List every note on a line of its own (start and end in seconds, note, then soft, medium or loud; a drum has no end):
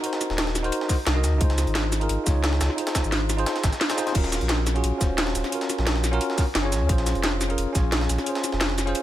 0.01 0.61 D#4 medium
0.01 0.62 F#4 medium
0.01 0.62 A#4 medium
0.01 closed hi-hat loud
0.01 closed hi-hat medium
0.06 0.63 C5 medium
0.13 snare medium
0.13 closed hi-hat soft
0.21 snare soft
0.21 closed hi-hat medium
0.21 cabasa medium
0.30 0.71 D#1 medium
0.30 snare soft
0.38 snare loud
0.38 closed hi-hat medium
0.47 snare medium
0.55 snare medium
0.55 closed hi-hat medium
0.55 cabasa medium
0.63 0.87 D#4 loud
0.63 0.87 F#4 medium
0.63 0.88 A#4 medium
0.63 0.88 C5 loud
0.63 closed hi-hat soft
0.72 closed hi-hat medium
0.81 snare soft
0.88 0.96 D#4 medium
0.88 0.96 F#4 medium
0.88 0.96 A#4 medium
0.88 0.97 C5 medium
0.88 kick loud
0.88 snare soft
0.88 closed hi-hat medium
0.88 open hi-hat medium
0.88 cabasa medium
1.06 1.25 C2 loud
1.06 snare loud
1.06 closed hi-hat medium
1.14 1.37 D#4 loud
1.14 1.39 F#4 medium
1.14 1.39 A#4 medium
1.14 1.39 D#5 loud
1.24 1.34 D#2 medium
1.24 snare soft
1.24 closed hi-hat medium
1.24 cabasa medium
1.33 1.40 C2 loud
1.38 1.66 C#2 loud
1.38 1.98 D#4 medium
1.38 1.99 F4 medium
1.38 2.00 G#4 medium
1.38 kick loud
1.38 closed hi-hat medium
1.44 2.01 C5 loud
1.50 snare soft
1.50 closed hi-hat soft
1.58 snare soft
1.58 closed hi-hat medium
1.58 cabasa medium
1.67 2.08 G#1 medium
1.67 closed hi-hat soft
1.75 snare loud
1.75 closed hi-hat loud
1.75 closed hi-hat medium
1.92 snare medium
1.92 closed hi-hat medium
1.92 cabasa medium
2.00 2.23 D#4 medium
2.00 2.24 F4 medium
2.00 2.25 G#4 medium
2.00 2.25 A#4 medium
2.00 closed hi-hat soft
2.09 2.18 G#1 medium
2.09 closed hi-hat loud
2.09 closed hi-hat medium
2.24 2.60 C#2 medium
2.24 2.74 D#4 medium
2.24 2.76 F4 medium
2.24 2.77 G#4 medium
2.24 kick loud
2.24 snare soft
2.24 closed hi-hat medium
2.24 cabasa medium
2.29 2.77 C#5 medium
2.44 snare loud
2.44 closed hi-hat medium
2.44 closed hi-hat loud
2.53 snare medium
2.61 2.69 C#2 loud
2.61 snare loud
2.61 closed hi-hat medium
2.61 cabasa medium
2.70 snare soft
2.75 3.35 D#4 medium
2.75 3.36 F4 medium
2.75 3.37 G#4 medium
2.75 closed hi-hat medium
2.75 closed hi-hat loud
2.81 3.38 C5 medium
2.87 snare loud
2.87 closed hi-hat medium
2.87 closed hi-hat soft
2.95 kick medium
2.95 snare loud
2.95 snare soft
2.95 closed hi-hat medium
2.95 cabasa medium
3.04 3.45 G#1 medium
3.04 cabasa soft
3.12 snare loud
3.12 closed hi-hat loud
3.12 closed hi-hat medium
3.29 snare medium
3.29 closed hi-hat medium
3.29 cabasa medium
3.37 3.61 D#4 loud
3.37 3.61 F4 medium
3.37 3.62 G#4 medium
3.37 3.62 C5 loud
3.37 closed hi-hat soft
3.46 snare loud
3.46 closed hi-hat medium
3.46 closed hi-hat loud
3.56 snare medium
3.56 closed hi-hat soft
3.64 3.72 G#1 medium
3.64 kick loud
3.64 snare loud
3.64 snare soft
3.64 closed hi-hat medium
3.64 cabasa medium
3.73 snare medium
3.73 cabasa soft
3.81 snare soft
3.81 snare loud
3.81 closed hi-hat medium
3.81 closed hi-hat loud
3.88 3.95 D#4 medium
3.88 3.96 F4 medium
3.88 3.96 G#4 medium
3.88 3.97 C5 loud
3.88 snare loud
3.88 closed hi-hat medium
3.88 cabasa soft
3.96 4.04 D#4 loud
3.96 4.05 F4 medium
3.96 4.06 G#4 medium
3.96 4.06 C5 loud
3.96 snare medium
3.96 closed hi-hat medium
3.96 cabasa medium
4.06 4.12 D#4 medium
4.06 4.13 F4 medium
4.06 4.13 G#4 medium
4.06 4.14 C5 medium
4.06 snare soft
4.06 closed hi-hat medium
4.12 4.40 D#1 loud
4.12 4.72 C#4 medium
4.12 4.73 F4 medium
4.12 4.74 F#4 medium
4.12 kick loud
4.12 closed hi-hat medium
4.12 closed hi-hat loud
4.12 crash medium
4.18 4.75 A#4 medium
4.24 snare soft
4.24 closed hi-hat soft
4.32 snare soft
4.32 closed hi-hat medium
4.32 cabasa medium
4.41 4.82 A#1 medium
4.41 closed hi-hat soft
4.49 snare loud
4.49 closed hi-hat medium
4.49 closed hi-hat loud
4.66 snare medium
4.66 closed hi-hat medium
4.66 cabasa medium
4.74 4.97 C#4 medium
4.74 4.99 F4 medium
4.74 4.99 F#4 medium
4.74 5.00 G#4 medium
4.74 closed hi-hat soft
4.84 4.92 A#1 medium
4.84 closed hi-hat medium
4.84 closed hi-hat loud
4.98 5.34 D#1 loud
4.98 5.48 C#4 medium
4.98 5.50 F4 medium
4.98 5.51 F#4 medium
4.98 kick loud
4.98 snare soft
4.98 closed hi-hat medium
4.98 cabasa medium
5.03 5.52 C5 medium
5.18 snare loud
5.18 closed hi-hat medium
5.18 closed hi-hat loud
5.27 snare medium
5.35 5.43 D#1 loud
5.35 snare soft
5.35 closed hi-hat medium
5.35 cabasa medium
5.44 snare soft
5.44 closed hi-hat soft
5.50 6.09 C#4 medium
5.50 6.10 F4 medium
5.50 6.11 F#4 medium
5.50 closed hi-hat medium
5.55 6.12 A#4 medium
5.61 snare medium
5.61 closed hi-hat soft
5.69 snare soft
5.69 closed hi-hat medium
5.69 cabasa medium
5.78 6.20 A#1 medium
5.78 snare soft
5.87 snare loud
5.87 closed hi-hat medium
5.96 snare medium
6.04 snare medium
6.04 closed hi-hat medium
6.04 cabasa medium
6.11 6.35 C#4 loud
6.11 6.36 F4 medium
6.11 6.36 F#4 medium
6.11 6.37 A#4 loud
6.11 closed hi-hat soft
6.21 closed hi-hat medium
6.30 snare soft
6.37 6.44 C#4 medium
6.37 6.45 F4 medium
6.37 6.45 F#4 medium
6.37 6.45 A#4 medium
6.37 kick loud
6.37 snare soft
6.37 closed hi-hat medium
6.37 open hi-hat medium
6.37 cabasa medium
6.55 6.74 F#1 loud
6.55 snare loud
6.55 closed hi-hat medium
6.63 6.85 C#4 medium
6.63 6.87 F4 medium
6.63 6.88 G#4 medium
6.63 6.88 C#5 loud
6.72 6.82 A#1 medium
6.72 snare soft
6.72 closed hi-hat medium
6.72 cabasa medium
6.81 6.88 D#2 loud
6.87 7.14 A#1 loud
6.87 7.46 C#4 medium
6.87 7.47 F4 medium
6.87 7.48 G#4 medium
6.87 kick loud
6.87 closed hi-hat medium
6.92 7.49 C5 loud
6.98 snare soft
6.98 closed hi-hat soft
7.06 snare soft
7.06 closed hi-hat medium
7.06 cabasa medium
7.15 7.57 F1 medium
7.15 closed hi-hat soft
7.23 snare loud
7.23 closed hi-hat medium
7.41 snare medium
7.41 closed hi-hat medium
7.41 cabasa medium
7.49 7.71 C#4 medium
7.49 7.73 F4 medium
7.49 7.73 G#4 medium
7.49 7.74 A#4 medium
7.49 closed hi-hat soft
7.58 7.66 F1 medium
7.58 closed hi-hat medium
7.73 8.08 A#1 loud
7.73 8.23 C#4 medium
7.73 8.24 F4 medium
7.73 8.25 G#4 medium
7.73 kick loud
7.73 snare soft
7.73 closed hi-hat medium
7.73 cabasa medium
7.78 8.26 C#5 medium
7.92 snare loud
7.92 closed hi-hat medium
8.01 snare medium
8.09 8.18 A#1 loud
8.09 snare soft
8.09 closed hi-hat medium
8.09 cabasa medium
8.18 snare soft
8.18 closed hi-hat soft
8.24 8.84 C#4 medium
8.24 8.84 F4 medium
8.24 8.85 G#4 medium
8.24 closed hi-hat medium
8.29 8.86 C5 medium
8.35 snare medium
8.35 closed hi-hat soft
8.44 snare soft
8.44 closed hi-hat medium
8.44 cabasa medium
8.52 8.94 F1 medium
8.52 snare soft
8.61 snare loud
8.61 closed hi-hat medium
8.70 snare medium
8.78 snare medium
8.78 closed hi-hat medium
8.78 cabasa medium
8.86 9.03 C#4 loud
8.86 9.03 F4 medium
8.86 9.03 G#4 medium
8.86 9.03 C5 loud
8.86 closed hi-hat soft
8.95 closed hi-hat medium